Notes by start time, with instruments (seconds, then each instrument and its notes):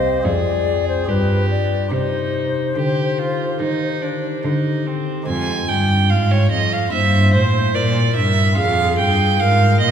Already playing: pipe organ C2 C4 G4 C5, cello C2, violin C5, flute D#5
0.21 pipe organ C4 F4 G#4, violin G#4
0.25 pipe organ F2, cello F2, flute D5
0.88 flute C5
1.05 cello G2, pipe organ G2 F4 G4, violin G4, flute B4
1.50 flute D5
1.89 cello C3, pipe organ C3 D#4 G4, violin D#4, flute C5
2.76 cello D3, pipe organ D3, violin G4
3.19 violin F4
3.60 pipe organ D#3, cello D#3, violin D#4
4.02 violin D4
4.44 pipe organ D3, cello D3, violin D#4
4.86 violin C4
5.23 pipe organ G#3 C4 F4
5.27 cello F2, pipe organ F2, violin G#5
5.68 pipe organ G2, cello G2, violin G5
6.10 pipe organ G#2, cello G#2, violin F5
6.31 violin C#5
6.51 cello F2, pipe organ F2, violin D#5
6.73 violin F5
6.88 pipe organ A#3 E4
6.92 pipe organ G2, cello G2, flute C5, violin E5
7.34 pipe organ A2, cello A2, violin C5
7.75 pipe organ A#2, cello A#2, flute A#4, violin D5
8.16 cello G2, pipe organ G2, violin E5
8.53 pipe organ C4 F4 G#4
8.57 pipe organ F2, cello F2, flute G#4, violin F5
8.99 pipe organ G2, cello G2, violin G5
9.40 pipe organ G#2, cello G#2, flute A#4, violin F5
9.81 pipe organ A#2, cello A#2, violin D#5